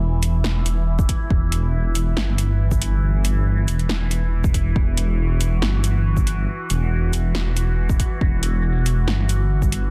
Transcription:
Already playing: detuned saw bass E1, synth drone E3 E4
0.23 closed hi-hat, shaker
0.44 snare
0.66 closed hi-hat, shaker
0.99 kick, shaker
1.09 kick, closed hi-hat
1.30 detuned saw bass E1, kick
1.52 closed hi-hat
1.95 closed hi-hat, shaker
2.17 detuned saw bass G1, snare
2.38 closed hi-hat, shaker
2.71 kick, shaker
2.82 closed hi-hat
3.03 detuned saw bass G1
3.25 closed hi-hat, shaker
3.68 detuned saw bass E1, closed hi-hat, shaker
3.79 closed hi-hat
3.89 snare
4.11 closed hi-hat, shaker
4.44 kick, shaker
4.54 kick, closed hi-hat
4.76 detuned saw bass E1, synth drone F#4, kick
4.97 closed hi-hat
5.41 closed hi-hat, shaker
5.62 detuned saw bass G1, snare
5.84 closed hi-hat, shaker
6.17 kick, shaker
6.27 closed hi-hat
6.70 detuned saw bass E1, closed hi-hat, shaker
7.13 closed hi-hat, shaker
7.35 snare
7.57 closed hi-hat, shaker
7.89 kick, shaker
8.00 kick, closed hi-hat
8.21 detuned saw bass E1, kick
8.43 closed hi-hat
8.86 closed hi-hat, shaker
9.08 detuned saw bass G1, snare
9.29 closed hi-hat, shaker
9.62 kick, shaker
9.72 closed hi-hat

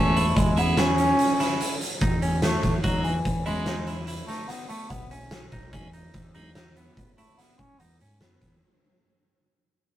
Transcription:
Already playing: fretless electric bass E2, tonewheel organ E3 G#3 B3 C#4, bass clarinet A3, clean electric guitar C#4
0.17 clean electric guitar E4, closed hi-hat
0.37 fretless electric bass E2, bass clarinet G#3, kick, closed hi-hat
0.57 tonewheel organ E3 G#3 B3 C#4, bass clarinet B3, clean electric guitar E4, closed hi-hat
0.77 bass clarinet C#4, clean electric guitar E4, snare, closed hi-hat
0.98 clean electric guitar C#4, closed hi-hat
1.19 closed hi-hat
1.40 clean electric guitar E4, snare, closed hi-hat
1.61 closed hi-hat
1.81 closed hi-hat
2.01 fretless electric bass E2, clean electric guitar D#4, kick, closed hi-hat
2.22 clean electric guitar C#4, closed hi-hat
2.42 clean electric guitar A3, bass clarinet A3, snare, closed hi-hat
2.62 fretless electric bass E2, bass clarinet A3, kick, snare, closed hi-hat
2.83 fretless electric bass E2, bass clarinet F#3, tonewheel organ F#3 G#3 B3 D#4, clean electric guitar F#4, kick, closed hi-hat
3.03 bass clarinet E3, closed hi-hat
3.25 fretless electric bass E2, kick, closed hi-hat
3.46 fretless electric bass E2, tonewheel organ F#3 G#3 B3 C#4, bass clarinet G#3, clean electric guitar E4, closed hi-hat
3.66 clean electric guitar D#4, snare, closed hi-hat
3.87 clean electric guitar E4, closed hi-hat
4.07 clean electric guitar E4, closed hi-hat
4.27 bass clarinet A3, clean electric guitar D#4, snare, closed hi-hat
4.47 bass clarinet B3, snare, closed hi-hat
4.68 bass clarinet A3, clean electric guitar B3, closed hi-hat
4.89 fretless electric bass B1, bass clarinet B3, kick, closed hi-hat
5.11 clean electric guitar C#4, closed hi-hat
5.31 snare, closed hi-hat
5.52 fretless electric bass B1, clean electric guitar D#4, kick, closed hi-hat
5.73 fretless electric bass E2, tonewheel organ F#3 G#3 B3 D#4, clean electric guitar C#4, kick, closed hi-hat
5.93 clean electric guitar D#4, closed hi-hat
6.14 fretless electric bass E2, kick, snare, closed hi-hat
6.35 tonewheel organ F#3 G#3 B3 D#4, clean electric guitar D#4, closed hi-hat
6.55 clean electric guitar D#4, snare, closed hi-hat
6.76 clean electric guitar B3, closed hi-hat
6.97 kick, closed hi-hat
7.17 bass clarinet A3, clean electric guitar E4, closed hi-hat
7.37 bass clarinet B3, snare, closed hi-hat
7.58 bass clarinet C#4, kick, closed hi-hat
7.79 fretless electric bass E2, bass clarinet B3, clean electric guitar D#4, closed hi-hat
8.00 fretless electric bass G#2, clean electric guitar C#4, closed hi-hat
8.21 fretless electric bass F#2, clean electric guitar B3, snare, closed hi-hat
8.41 fretless electric bass E2, kick, snare, closed hi-hat

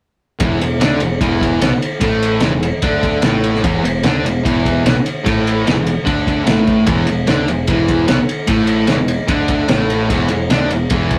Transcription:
0.39 picked electric bass E1, distorted electric guitar E2 E3, kick, ride
0.60 picked electric bass E1, distorted electric guitar E2, ride
0.80 picked electric bass D2, distorted electric guitar D3 D4, snare, ride
1.00 picked electric bass E1, distorted electric guitar E2, ride
1.21 picked electric bass E1, distorted electric guitar E2 E3, kick, ride
1.41 kick, ride
1.59 picked electric bass B1, distorted electric guitar B2 B3, snare, ride
1.70 muted distorted electric guitar stroke, muted picked electric bass stroke
1.82 ride
2.00 picked electric bass A1, distorted electric guitar A2 A3, kick, ride
2.23 ride
2.40 picked electric bass E1, distorted electric guitar E2 E3, snare, ride
2.52 picked electric bass E1, distorted electric guitar E2
2.63 ride
2.82 picked electric bass D2, distorted electric guitar D3 D4, kick, ride
3.03 kick, ride
3.22 picked electric bass A1, distorted electric guitar A2 A3, snare, ride
3.44 ride
3.55 snare
3.63 picked electric bass E1, distorted electric guitar E2 E3, kick, ride
3.83 picked electric bass E1, distorted electric guitar E2, ride
4.03 picked electric bass D2, distorted electric guitar D3 D4, snare, ride
4.23 picked electric bass E1, distorted electric guitar E2, ride
4.44 picked electric bass E1, distorted electric guitar E2 E3, kick, ride
4.65 kick, ride
4.84 picked electric bass B1, distorted electric guitar B2 B3, snare, ride
4.95 muted distorted electric guitar stroke, muted picked electric bass stroke
5.06 ride
5.24 picked electric bass A1, distorted electric guitar A2 A3, kick, ride
5.47 ride
5.65 picked electric bass E1, distorted electric guitar E2 E3, snare, ride
5.76 picked electric bass E1, distorted electric guitar E2
5.87 ride
6.05 picked electric bass D2, distorted electric guitar D3 D4, kick, ride
6.27 kick, ride
6.46 picked electric bass A1, distorted electric guitar A2 A3, snare, ride
6.67 kick, ride
6.86 picked electric bass E1, distorted electric guitar E2 E3, kick, ride
7.07 picked electric bass E1, distorted electric guitar E2, ride
7.26 picked electric bass D2, distorted electric guitar D3 D4, snare, ride
7.48 picked electric bass E1, distorted electric guitar E2, ride
7.67 picked electric bass E1, distorted electric guitar E2 E3, kick, ride
7.88 kick, ride
8.07 picked electric bass B1, distorted electric guitar B2 B3, snare, ride
8.18 muted distorted electric guitar stroke, muted picked electric bass stroke
8.29 ride
8.47 picked electric bass A1, distorted electric guitar A2 A3, kick, ride
8.67 ride
8.87 picked electric bass E1, distorted electric guitar E2 E3, snare, ride
8.98 picked electric bass E1, distorted electric guitar E2
9.08 ride
9.27 picked electric bass D2, distorted electric guitar D3 D4, kick, ride
9.48 kick, ride
9.68 picked electric bass A1, distorted electric guitar A2 A3, snare, ride
9.90 ride
10.08 picked electric bass E1, distorted electric guitar E2 E3, kick, ride
10.28 picked electric bass E1, distorted electric guitar E2, ride
10.50 picked electric bass D2, distorted electric guitar D3 D4, snare, ride
10.70 picked electric bass E1, distorted electric guitar E2, ride
10.89 picked electric bass E1, distorted electric guitar E2 E3, kick, ride
11.11 kick, ride

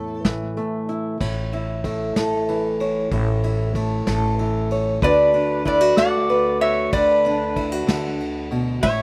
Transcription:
Already playing: upright bass E2, steel-string acoustic guitar A2 A3 E4 A4, resonator guitar played with a steel bar A4
0.25 upright bass A1, steel-string acoustic guitar E3, kick, snare, closed hi-hat
0.57 steel-string acoustic guitar A3, closed hi-hat
0.89 steel-string acoustic guitar E4, closed hi-hat
1.20 upright bass A1, steel-string acoustic guitar A2, kick, crash
1.52 steel-string acoustic guitar E4, ride
1.84 steel-string acoustic guitar A3, kick, ride
2.16 upright bass A1, steel-string acoustic guitar A4, snare, ride
2.48 steel-string acoustic guitar E3, ride
2.80 steel-string acoustic guitar C#5, ride
3.11 upright bass A1, steel-string acoustic guitar A2, kick, ride
3.44 steel-string acoustic guitar E4, ride
3.75 steel-string acoustic guitar A3, kick, ride
4.07 upright bass A1, steel-string acoustic guitar A4, snare, ride
4.39 steel-string acoustic guitar E3, ride
4.70 steel-string acoustic guitar C#5, ride
5.02 upright bass D2, steel-string acoustic guitar D3 A3 D4 F#4 B4, pedal steel guitar B4, resonator guitar played with a steel bar D5, kick, ride
5.34 steel-string acoustic guitar D4, ride
5.65 steel-string acoustic guitar E4, pedal steel guitar B4, resonator guitar played with a steel bar D5, kick, ride
5.81 steel-string acoustic guitar F#4
5.97 upright bass D2, steel-string acoustic guitar A3, pedal steel guitar D5, resonator guitar played with a steel bar F#5, snare, ride
6.29 steel-string acoustic guitar B4, ride
6.61 steel-string acoustic guitar F#4, pedal steel guitar C#5, resonator guitar played with a steel bar E5, ride
6.93 upright bass D2, steel-string acoustic guitar D3, pedal steel guitar B4, resonator guitar played with a steel bar D5, kick, ride
7.24 steel-string acoustic guitar D4, ride
7.56 steel-string acoustic guitar E4, kick, ride
7.72 steel-string acoustic guitar F#4
7.87 upright bass D2, steel-string acoustic guitar D3, snare, ride
8.20 ride
8.51 steel-string acoustic guitar B2, ride
8.83 upright bass A1, steel-string acoustic guitar A2, pedal steel guitar C#5, resonator guitar played with a steel bar E5, kick, ride

